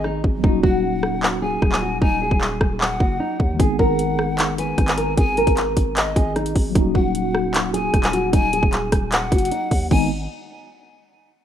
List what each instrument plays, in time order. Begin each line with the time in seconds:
Already playing: 808-style bass G#1, tine electric piano D#3 G#3 B3 D#4 G#4
0.04 nylon-string guitar D#4, cross-stick
0.24 808-style bass G#1, kick
0.38 tine electric piano F#3 A#3
0.44 808-style bass D#1, tine electric piano C#4 D#4, nylon-string guitar D#4, kick
0.49 tine electric piano F#4
0.63 808-style bass D#1, nylon-string guitar F#4, pan flute F#5, kick
1.03 cross-stick
1.23 clap
1.42 nylon-string guitar G#4, pan flute G#5
1.62 808-style bass D#1, kick, cross-stick
1.72 clap
1.82 nylon-string guitar F#4
2.02 808-style bass D#1, nylon-string guitar D#4, pan flute G#5, kick
2.22 nylon-string guitar G#4
2.31 808-style bass D#1, kick
2.41 clap
2.61 808-style bass D#1, kick, cross-stick
2.81 pan flute F#5, clap
3.00 808-style bass F#1, nylon-string guitar F#4, kick
3.20 nylon-string guitar D#4
3.40 808-style bass D#2, kick
3.54 tine electric piano D#3 G#3
3.59 808-style bass G#1, tine electric piano B3 D#4, nylon-string guitar G#4, kick, closed hi-hat
3.65 tine electric piano G#4
3.79 808-style bass G#1, nylon-string guitar A#4, pan flute F#5, kick
3.99 closed hi-hat
4.19 cross-stick
4.38 clap, closed hi-hat
4.58 nylon-string guitar B4, pan flute G#5, closed hi-hat
4.78 808-style bass G#1, kick, cross-stick, closed hi-hat
4.88 clap, closed hi-hat
4.98 nylon-string guitar A#4, closed hi-hat
5.17 808-style bass G#1, nylon-string guitar G#4, pan flute G#5, kick, closed hi-hat
5.37 nylon-string guitar A#4, closed hi-hat
5.47 808-style bass G#1, kick, closed hi-hat
5.57 clap, closed hi-hat
5.77 808-style bass G#1, kick, closed hi-hat
5.96 pan flute D#5, clap, closed hi-hat
6.16 808-style bass G#1, nylon-string guitar G#4, kick, closed hi-hat
6.36 nylon-string guitar D#4, cross-stick, closed hi-hat
6.46 closed hi-hat
6.55 808-style bass G#1, kick, open hi-hat
6.70 tine electric piano F#3 A#3
6.75 808-style bass D#1, tine electric piano C#4 D#4, nylon-string guitar D#4, kick, closed hi-hat
6.81 tine electric piano F#4
6.95 808-style bass D#1, nylon-string guitar F#4, pan flute F#5, kick
7.15 closed hi-hat
7.35 cross-stick
7.54 clap, closed hi-hat
7.74 nylon-string guitar G#4, pan flute G#5, closed hi-hat
7.94 808-style bass D#1, kick, cross-stick, closed hi-hat
8.04 clap, closed hi-hat
8.13 nylon-string guitar F#4, closed hi-hat
8.33 808-style bass D#1, nylon-string guitar D#4, pan flute G#5, kick, closed hi-hat
8.53 nylon-string guitar G#4, closed hi-hat
8.63 808-style bass D#1, kick
8.73 clap, closed hi-hat
8.92 808-style bass D#1, kick, cross-stick, closed hi-hat
9.12 pan flute F#5, clap, closed hi-hat
9.32 808-style bass F#1, nylon-string guitar F#4, kick, closed hi-hat
9.38 closed hi-hat
9.45 closed hi-hat
9.51 nylon-string guitar D#4, closed hi-hat
9.71 808-style bass D#2, kick, open hi-hat
9.91 808-style bass G#1, tine electric piano D#3 G#3 B3 D#4, nylon-string guitar D#4, pan flute G#5, kick, crash